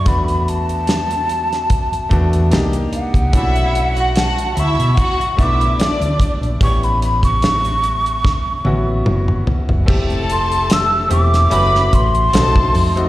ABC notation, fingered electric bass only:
X:1
M:4/4
L:1/16
Q:"Swing 16ths" 1/4=73
K:Bm
V:1 name="Fingered electric bass" clef=bass
E,,8 z2 E,,2 =C,,2 z C,, | B,,,4- B,,, z D,, B,, z2 B,,,2 z D,, z _B,,, | A,,,8 z2 A,,,2 F,,,2 z F,,, | =F,,,6 E,,,2 ^F,,,2 A,,,2 B,,,2 =F,,2 |]